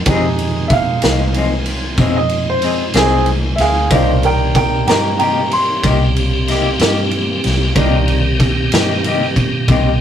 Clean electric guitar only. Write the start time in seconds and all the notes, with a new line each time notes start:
0.08 F3 C4 D#4 G#4
1.02 C4 D#4 G#4
1.35 F3 C4 D#4 G#4
1.98 F3 C4 D#4 G#4
2.62 F3 C4 D#4 G#4
2.94 C4 D#4 G#4
3.90 C3 A#3 D#4 G4
4.88 A#3 D#4 G4
5.20 C3 A#3 D#4 G4
5.83 C3 A#3 D#4 G4
6.48 C3 A#3 D#4 G4
6.80 D#4 G4
6.85 A#3
7.76 C3 A#3 D#4 G4
8.73 A#3 D#4 G4
9.04 C3 A#3 D#4 G4
9.69 C3 A#3 D#4 G4